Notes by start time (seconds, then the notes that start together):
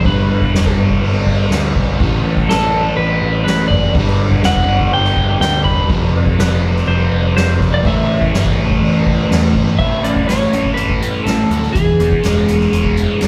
0.04 G1 G2 D3 B4, kick, ride
0.08 G3
0.29 ride
0.42 kick
0.53 E1, snare, ride
0.66 kick, snare
0.77 G1, ride
0.91 kick
1.02 G1, ride
1.27 G1, kick, ride
1.51 D2, snare, ride
1.75 B1, kick, ride
1.99 A1 A2 E3 A3, kick, crash
2.24 A1, ride
2.37 kick
2.49 A1 A4, snare, ride
2.74 ride
2.97 A1 B4, ride
3.22 A1, ride
3.44 A1 B4, snare, ride
3.68 F#1 D5, kick, ride
3.94 G1 G2 D3, kick, ride
3.98 G3
4.07 snare
4.19 ride
4.31 kick
4.43 E1 F#5, snare, ride
4.56 kick
4.67 G1, ride
4.80 kick
4.92 G1 G5, ride
5.04 snare
5.17 G1, kick, ride
5.40 D2 G5, snare, ride
5.64 E1 B5, kick, ride
5.88 F1 F2 C3, kick, ride
5.92 F3
6.14 F1, ride
6.26 kick
6.38 F1 B4, snare, ride
6.64 ride
6.76 snare
6.87 F1 C5, ride
7.11 F1, ride
7.35 F1 C5, snare, ride
7.60 F1, kick, snare, ride
7.74 D5
7.83 A1 A2 E3 A3, kick, ride
7.87 E5
8.09 ride
8.21 kick
8.33 G1, snare, ride
8.46 kick
8.58 A1, ride
8.70 kick
8.82 A1, ride
9.06 A1, kick, ride
9.31 E2, snare, ride
9.54 G1, kick, ride
9.79 A1 A3 E5, kick, crash
10.03 A1 C#4 D5, closed hi-hat
10.16 kick
10.27 A1 A3 C#5, snare, closed hi-hat
10.42 snare
10.53 A1 C#4, closed hi-hat
10.65 kick
10.74 A1 A4 B4, closed hi-hat
10.90 kick
11.02 E4, closed hi-hat
11.24 A1 A3 A4, snare, closed hi-hat
11.50 D2 E4, closed hi-hat
11.63 snare
11.73 E1 E3 G#4, kick, closed hi-hat
11.99 E1 B3, closed hi-hat
12.12 kick
12.23 E1 G#3, snare, closed hi-hat
12.48 E1 B3, snare, closed hi-hat
12.61 snare
12.72 E1 G#4, closed hi-hat
12.85 kick
12.97 E4, closed hi-hat
13.21 E1 G#3, snare, closed hi-hat